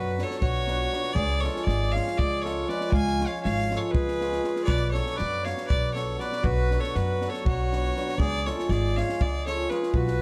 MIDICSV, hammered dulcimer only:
0, 0, Header, 1, 2, 480
1, 0, Start_track
1, 0, Tempo, 502092
1, 1101, Time_signature, 7, 3, 24, 8
1, 9769, End_track
2, 0, Start_track
2, 0, Title_t, "Hammered dulcimer"
2, 0, Program_c, 0, 15
2, 0, Note_on_c, 0, 54, 63
2, 160, Note_off_c, 0, 54, 0
2, 172, Note_on_c, 0, 54, 55
2, 177, Note_on_c, 0, 59, 53
2, 186, Note_on_c, 0, 62, 53
2, 189, Note_on_c, 0, 66, 64
2, 358, Note_off_c, 0, 59, 0
2, 363, Note_off_c, 0, 62, 0
2, 364, Note_off_c, 0, 66, 0
2, 627, Note_off_c, 0, 54, 0
2, 639, Note_on_c, 0, 54, 68
2, 649, Note_on_c, 0, 59, 68
2, 658, Note_on_c, 0, 62, 67
2, 663, Note_on_c, 0, 66, 82
2, 831, Note_off_c, 0, 59, 0
2, 835, Note_off_c, 0, 62, 0
2, 838, Note_off_c, 0, 66, 0
2, 871, Note_off_c, 0, 54, 0
2, 883, Note_on_c, 0, 54, 73
2, 887, Note_on_c, 0, 59, 57
2, 893, Note_on_c, 0, 62, 71
2, 896, Note_on_c, 0, 66, 70
2, 1064, Note_off_c, 0, 59, 0
2, 1067, Note_off_c, 0, 62, 0
2, 1068, Note_off_c, 0, 66, 0
2, 1149, Note_off_c, 0, 54, 0
2, 1371, Note_on_c, 0, 53, 62
2, 1373, Note_on_c, 0, 56, 60
2, 1381, Note_on_c, 0, 61, 58
2, 1384, Note_on_c, 0, 65, 74
2, 1558, Note_off_c, 0, 61, 0
2, 1559, Note_off_c, 0, 65, 0
2, 1837, Note_off_c, 0, 53, 0
2, 1846, Note_off_c, 0, 56, 0
2, 1849, Note_on_c, 0, 53, 57
2, 1857, Note_on_c, 0, 56, 59
2, 1861, Note_on_c, 0, 61, 56
2, 1869, Note_on_c, 0, 65, 69
2, 2043, Note_off_c, 0, 61, 0
2, 2047, Note_off_c, 0, 65, 0
2, 2320, Note_off_c, 0, 53, 0
2, 2325, Note_off_c, 0, 56, 0
2, 2332, Note_on_c, 0, 53, 68
2, 2336, Note_on_c, 0, 56, 64
2, 2344, Note_on_c, 0, 65, 73
2, 2345, Note_on_c, 0, 61, 56
2, 2521, Note_off_c, 0, 65, 0
2, 2522, Note_off_c, 0, 61, 0
2, 2544, Note_off_c, 0, 53, 0
2, 2550, Note_off_c, 0, 56, 0
2, 2556, Note_on_c, 0, 53, 69
2, 2562, Note_on_c, 0, 56, 62
2, 2568, Note_on_c, 0, 61, 64
2, 2568, Note_on_c, 0, 65, 69
2, 2747, Note_off_c, 0, 65, 0
2, 2748, Note_off_c, 0, 61, 0
2, 3037, Note_off_c, 0, 53, 0
2, 3043, Note_off_c, 0, 56, 0
2, 3048, Note_on_c, 0, 53, 57
2, 3055, Note_on_c, 0, 56, 53
2, 3059, Note_on_c, 0, 61, 60
2, 3071, Note_on_c, 0, 65, 67
2, 3240, Note_off_c, 0, 61, 0
2, 3246, Note_off_c, 0, 65, 0
2, 3520, Note_off_c, 0, 53, 0
2, 3527, Note_off_c, 0, 56, 0
2, 3532, Note_on_c, 0, 53, 56
2, 3538, Note_on_c, 0, 56, 54
2, 3544, Note_on_c, 0, 61, 49
2, 3551, Note_on_c, 0, 65, 66
2, 3728, Note_off_c, 0, 61, 0
2, 3731, Note_off_c, 0, 65, 0
2, 3999, Note_off_c, 0, 53, 0
2, 4009, Note_off_c, 0, 56, 0
2, 4011, Note_on_c, 0, 53, 65
2, 4020, Note_on_c, 0, 56, 60
2, 4022, Note_on_c, 0, 65, 69
2, 4027, Note_on_c, 0, 61, 54
2, 4202, Note_off_c, 0, 65, 0
2, 4205, Note_off_c, 0, 61, 0
2, 4223, Note_off_c, 0, 53, 0
2, 4230, Note_off_c, 0, 56, 0
2, 4235, Note_on_c, 0, 53, 63
2, 4241, Note_on_c, 0, 56, 60
2, 4254, Note_on_c, 0, 61, 65
2, 4256, Note_on_c, 0, 65, 70
2, 4433, Note_off_c, 0, 61, 0
2, 4434, Note_off_c, 0, 65, 0
2, 4520, Note_off_c, 0, 53, 0
2, 4520, Note_off_c, 0, 56, 0
2, 4730, Note_on_c, 0, 54, 61
2, 4740, Note_on_c, 0, 59, 54
2, 4749, Note_on_c, 0, 62, 51
2, 4752, Note_on_c, 0, 66, 65
2, 4922, Note_off_c, 0, 59, 0
2, 4927, Note_off_c, 0, 62, 0
2, 4928, Note_off_c, 0, 66, 0
2, 5197, Note_off_c, 0, 54, 0
2, 5208, Note_on_c, 0, 54, 60
2, 5211, Note_on_c, 0, 59, 55
2, 5218, Note_on_c, 0, 62, 48
2, 5231, Note_on_c, 0, 66, 61
2, 5402, Note_off_c, 0, 59, 0
2, 5406, Note_off_c, 0, 62, 0
2, 5412, Note_off_c, 0, 66, 0
2, 5667, Note_off_c, 0, 54, 0
2, 5679, Note_on_c, 0, 54, 63
2, 5689, Note_on_c, 0, 59, 56
2, 5694, Note_on_c, 0, 62, 61
2, 5706, Note_on_c, 0, 66, 68
2, 5877, Note_off_c, 0, 59, 0
2, 5880, Note_off_c, 0, 62, 0
2, 5885, Note_off_c, 0, 66, 0
2, 5902, Note_off_c, 0, 54, 0
2, 5912, Note_on_c, 0, 54, 70
2, 5914, Note_on_c, 0, 59, 54
2, 5919, Note_on_c, 0, 62, 59
2, 5924, Note_on_c, 0, 66, 75
2, 6103, Note_off_c, 0, 59, 0
2, 6105, Note_off_c, 0, 62, 0
2, 6108, Note_off_c, 0, 66, 0
2, 6392, Note_off_c, 0, 54, 0
2, 6404, Note_on_c, 0, 54, 62
2, 6410, Note_on_c, 0, 59, 63
2, 6416, Note_on_c, 0, 62, 55
2, 6427, Note_on_c, 0, 66, 75
2, 6597, Note_off_c, 0, 59, 0
2, 6600, Note_off_c, 0, 62, 0
2, 6605, Note_off_c, 0, 66, 0
2, 6876, Note_off_c, 0, 54, 0
2, 6888, Note_on_c, 0, 54, 55
2, 6893, Note_on_c, 0, 59, 45
2, 6897, Note_on_c, 0, 62, 50
2, 6903, Note_on_c, 0, 66, 67
2, 7082, Note_off_c, 0, 59, 0
2, 7084, Note_off_c, 0, 62, 0
2, 7087, Note_off_c, 0, 66, 0
2, 7367, Note_off_c, 0, 54, 0
2, 7378, Note_on_c, 0, 54, 69
2, 7386, Note_on_c, 0, 59, 66
2, 7391, Note_on_c, 0, 62, 63
2, 7391, Note_on_c, 0, 66, 75
2, 7564, Note_off_c, 0, 59, 0
2, 7566, Note_off_c, 0, 62, 0
2, 7566, Note_off_c, 0, 66, 0
2, 7597, Note_off_c, 0, 54, 0
2, 7609, Note_on_c, 0, 54, 69
2, 7615, Note_on_c, 0, 59, 59
2, 7620, Note_on_c, 0, 62, 58
2, 7632, Note_on_c, 0, 66, 74
2, 7792, Note_off_c, 0, 59, 0
2, 7794, Note_off_c, 0, 62, 0
2, 7800, Note_off_c, 0, 66, 0
2, 7878, Note_off_c, 0, 54, 0
2, 8084, Note_on_c, 0, 56, 58
2, 8086, Note_on_c, 0, 53, 59
2, 8092, Note_on_c, 0, 61, 61
2, 8094, Note_on_c, 0, 65, 72
2, 8275, Note_off_c, 0, 61, 0
2, 8276, Note_off_c, 0, 65, 0
2, 8555, Note_off_c, 0, 53, 0
2, 8566, Note_off_c, 0, 56, 0
2, 8567, Note_on_c, 0, 53, 56
2, 8578, Note_on_c, 0, 56, 55
2, 8582, Note_on_c, 0, 61, 47
2, 8593, Note_on_c, 0, 65, 71
2, 8764, Note_off_c, 0, 61, 0
2, 8769, Note_off_c, 0, 65, 0
2, 9035, Note_off_c, 0, 53, 0
2, 9041, Note_off_c, 0, 56, 0
2, 9046, Note_on_c, 0, 53, 67
2, 9052, Note_on_c, 0, 56, 62
2, 9053, Note_on_c, 0, 61, 66
2, 9058, Note_on_c, 0, 65, 69
2, 9234, Note_off_c, 0, 61, 0
2, 9236, Note_off_c, 0, 65, 0
2, 9266, Note_off_c, 0, 53, 0
2, 9277, Note_off_c, 0, 56, 0
2, 9277, Note_on_c, 0, 53, 61
2, 9289, Note_on_c, 0, 56, 67
2, 9294, Note_on_c, 0, 61, 60
2, 9300, Note_on_c, 0, 65, 74
2, 9467, Note_off_c, 0, 61, 0
2, 9470, Note_off_c, 0, 65, 0
2, 9550, Note_off_c, 0, 53, 0
2, 9550, Note_off_c, 0, 56, 0
2, 9769, End_track
0, 0, End_of_file